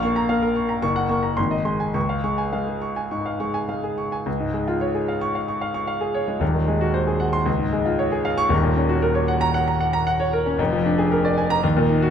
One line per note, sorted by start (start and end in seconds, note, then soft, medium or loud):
0.00 0.79 A#1 medium
0.00 0.24 A#3 medium
0.00 0.11 F5 medium
0.00 0.03 C#6 loud
0.00 0.24 C#6 medium
0.16 0.37 A#5 medium
0.29 0.50 A#3 medium
0.29 0.50 F5 medium
0.42 0.64 A#4 medium
0.56 0.77 C#6 medium
0.69 0.82 A#5 medium
0.82 1.36 F#1 medium
0.82 1.04 C#6 medium
0.96 1.18 F#5 medium
1.09 1.32 A#3 medium
1.09 1.32 C#6 medium
1.23 1.37 A#5 medium
1.37 1.93 G#1 medium
1.37 1.60 C6 medium
1.51 1.74 D#5 medium
1.65 1.89 G#3 medium
1.65 1.89 C6 medium
1.80 1.95 G#5 medium
1.94 3.07 C#2 medium
1.94 2.18 C#6 medium
2.09 2.33 F5 medium
2.24 2.47 G#3 medium
2.24 2.47 C#6 medium
2.38 2.61 G#5 medium
2.53 2.76 G#3 medium
2.53 2.76 F5 medium
2.67 2.91 G#4 soft
2.82 3.05 C#6 medium
2.96 3.20 G#5 medium
3.11 3.35 G#2 soft
3.11 3.35 C#6 medium
3.26 3.49 F5 medium
3.40 3.63 G#3 medium
3.40 3.63 C#6 medium
3.54 3.78 G#5 medium
3.69 3.92 G#3 soft
3.69 3.92 F5 medium
3.84 4.07 G#4 medium
3.98 4.21 C#6 medium
4.12 4.27 G#5 medium
4.26 6.37 C#2 medium
4.40 4.62 G#2 medium
4.54 4.76 G#3 medium
4.68 4.89 F4 medium
4.81 5.03 C#5 medium
4.95 5.16 G#4 medium
5.08 5.29 F5 medium
5.21 5.43 C#6 medium
5.35 5.56 F5 medium
5.48 5.69 C#6 medium
5.61 5.83 F5 medium
5.74 5.96 C#6 medium
5.87 6.09 F5 medium
6.01 6.22 G#4 medium
6.15 6.36 C#5 medium
6.28 6.41 G#3 medium
6.40 7.43 D#1 medium
6.40 7.44 D#2 medium
6.54 6.76 D#3 medium
6.68 6.89 G#3 medium
6.81 7.02 F#4 medium
6.94 7.15 C5 medium
7.07 7.29 G#4 medium
7.20 7.41 F#5 medium
7.33 7.47 C6 medium
7.46 8.48 C#2 medium
7.59 7.81 G#2 medium
7.73 7.95 G#3 medium
7.86 8.07 F4 medium
7.99 8.21 C#5 medium
8.12 8.33 G#4 medium
8.25 8.46 F5 medium
8.38 8.51 C#6 loud
8.49 10.54 D#1 medium
8.49 10.54 D#2 medium
8.63 8.85 A#2 medium
8.76 8.97 C#4 medium
8.89 9.10 F#4 medium
9.02 9.23 A#4 medium
9.15 9.36 C#5 medium
9.28 9.49 F#5 medium
9.41 9.62 A#5 medium
9.54 9.75 F#5 medium
9.68 9.89 A#5 medium
9.81 10.02 F#5 medium
9.93 10.15 A#5 medium
10.07 10.28 F#5 medium
10.20 10.41 C#5 medium
10.33 10.54 A#4 medium
10.46 10.59 C#4 medium
10.58 11.59 F1 medium
10.58 11.60 F2 medium
10.72 10.93 F3 medium
10.85 11.06 D4 medium
10.98 11.19 G#4 medium
11.12 11.32 A#4 medium
11.25 11.45 D5 medium
11.38 11.58 G#5 medium
11.50 11.63 A#5 loud
11.63 12.10 D#2 medium
11.77 11.97 A#2 medium
11.89 12.10 D#4 medium
12.02 12.10 F#4 medium